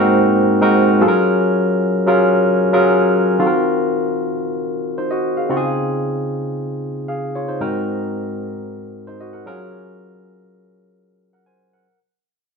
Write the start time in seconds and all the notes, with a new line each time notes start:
Already playing: G#2 A#3 D#4 F#4 A#4
0.00 C4
0.61 G#2 C4 D#4 F#4 A#4
1.01 F#3 C#4 F4 G#4 A4
1.08 A#4
2.07 F#3 C#4 F4 G#4 A#4
2.73 F#3 C#4 F4 G#4 A#4
3.39 D#3 C4 F4 F#4 A4
3.47 A#4
4.98 D#4 C5
5.11 F#4 D#5
5.37 G#4 F5
5.49 C#3 C4 D#4 F4 F#4
5.57 G#4
7.08 G#4 F5
7.35 F4 C#5
7.48 D#4 C5
7.60 G#2 C4 D#4 F#4 A#4
9.07 D#4 C5
9.21 F#4 D#5
9.33 A#4 F#5
9.46 F#3 C#4 F4 G#4 A#4
11.33 A#4 F#5
11.46 C5 G#5
11.73 A#4 F#5